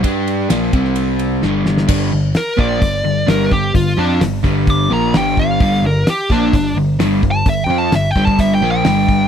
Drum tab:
CC |----------------|x---------------|----------------|----------------|
RD |x-x-x-x-x-x-----|----------------|----------------|----------------|
HH |----------------|----o---o---o---|o---o---o---o---|o---o---o---o---|
SD |----o--o----o-oo|----o-------o---|----o-------o---|----o-------o---|
BD |o-----o---------|o-----o-o-----o-|o-----o-o-----o-|o-----o-o-----o-|

CC |----------------|
RD |----------------|
HH |o---o---o---o---|
SD |----o-------o---|
BD |o-----ooo-----o-|